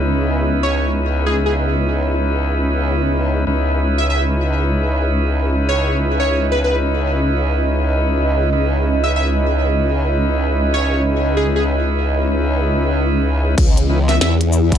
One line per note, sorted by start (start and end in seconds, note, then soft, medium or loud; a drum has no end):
0.00 3.45 C#2 medium
0.00 3.43 B3 medium
0.00 3.45 C#4 medium
0.00 3.45 D#4 medium
0.00 3.45 E4 medium
0.00 3.45 B4 medium
0.63 0.92 C#5 medium
1.26 1.39 G#4 medium
1.46 1.54 G#4 medium
3.47 13.55 C#2 medium
3.47 8.50 C#4 medium
3.47 13.54 C#4 medium
3.47 8.50 D#4 medium
3.47 8.50 E4 medium
3.47 8.50 B4 medium
3.47 13.58 D#5 medium
3.98 4.06 E5 medium
4.10 4.23 E5 medium
5.69 5.97 C#5 medium
6.20 6.46 C#5 medium
6.52 6.59 B4 medium
6.64 6.76 B4 medium
8.53 13.55 C#4 medium
8.53 13.55 D#4 medium
8.53 13.55 E4 medium
8.53 13.55 B4 medium
9.04 9.11 E5 medium
9.16 9.28 E5 medium
10.74 11.02 C#5 medium
11.37 11.49 G#4 medium
11.56 11.64 G#4 medium
13.58 14.19 C#2 loud
13.58 14.78 E3 medium
13.58 14.78 B3 medium
13.58 14.78 E4 loud
13.58 kick loud
13.58 closed hi-hat medium
13.58 crash loud
13.77 closed hi-hat medium
13.89 13.99 C#4 medium
13.89 13.99 D#4 medium
13.89 13.99 E4 medium
13.89 13.99 B4 medium
14.09 14.17 E5 medium
14.09 snare soft
14.09 closed hi-hat soft
14.21 14.78 E2 medium
14.21 14.34 E5 medium
14.21 snare loud
14.21 closed hi-hat medium
14.41 closed hi-hat medium
14.53 shaker medium
14.72 kick medium
14.72 closed hi-hat soft